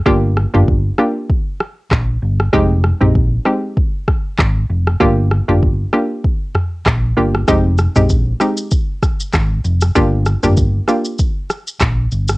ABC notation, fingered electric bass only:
X:1
M:4/4
L:1/16
Q:"Swing 16ths" 1/4=97
K:Gphr
V:1 name="Fingered electric bass" clef=bass
G,,,3 G,,,3 z6 B,,,2 G,,,2 | F,,,3 B,,,3 z6 A,,,2 F,,,2 | G,,,3 G,,,3 z6 B,,,2 G,,,2 | F,,,3 B,,,3 z6 A,,,2 F,,,2 |
G,,,3 G,,,3 z6 B,,,2 G,,,2 |]